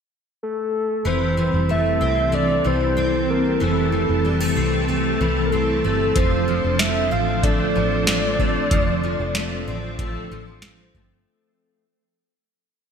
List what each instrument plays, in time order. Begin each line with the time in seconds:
0.43 soft synth lead A4
1.04 fingered electric bass F1, string machine E3 C4 G4 A5, twelve-string acoustic guitar E3, soft synth lead C5
1.37 twelve-string acoustic guitar E3
1.54 fingered electric bass F1
1.69 twelve-string acoustic guitar A3, soft synth lead E5
2.01 fingered electric bass C2, twelve-string acoustic guitar C4
2.32 twelve-string acoustic guitar A3, soft synth lead D5
2.64 fingered electric bass C2, twelve-string acoustic guitar E3, soft synth lead C5
2.97 twelve-string acoustic guitar C4
3.30 soft synth lead A#4
3.60 fingered electric bass F1, twelve-string acoustic guitar E3, soft synth lead A4
3.92 twelve-string acoustic guitar E3
4.09 fingered electric bass F1
4.25 twelve-string acoustic guitar G3
4.41 twelve-string acoustic guitar A3
4.56 fingered electric bass C2, twelve-string acoustic guitar C4
4.89 twelve-string acoustic guitar A3
5.21 fingered electric bass C2, twelve-string acoustic guitar E3
5.46 soft synth lead A#4
5.52 twelve-string acoustic guitar C4, soft synth lead A4
5.84 fingered electric bass G1, twelve-string acoustic guitar A3
6.16 fingered electric bass F1, twelve-string acoustic guitar F3, string machine F3 D4 C5, soft synth lead C5, kick, closed hi-hat
6.48 twelve-string acoustic guitar F3
6.64 fingered electric bass F1
6.79 twelve-string acoustic guitar A3, soft synth lead E5, snare, closed hi-hat
7.11 fingered electric bass A1, twelve-string acoustic guitar C4, soft synth lead F5
7.43 twelve-string acoustic guitar A3, soft synth lead D5, kick, closed hi-hat
7.75 fingered electric bass A1, twelve-string acoustic guitar F3
8.07 twelve-string acoustic guitar C4, snare, closed hi-hat
8.39 twelve-string acoustic guitar A3, kick
8.71 fingered electric bass F1, twelve-string acoustic guitar F3, kick, closed hi-hat
9.03 twelve-string acoustic guitar F3
9.20 fingered electric bass F1
9.35 twelve-string acoustic guitar A3, snare, closed hi-hat
9.68 fingered electric bass A1, twelve-string acoustic guitar C4
9.99 twelve-string acoustic guitar A3, kick, closed hi-hat
10.31 fingered electric bass A1, twelve-string acoustic guitar F3
10.62 twelve-string acoustic guitar C4, snare, closed hi-hat
10.94 fingered electric bass G1, twelve-string acoustic guitar A3, kick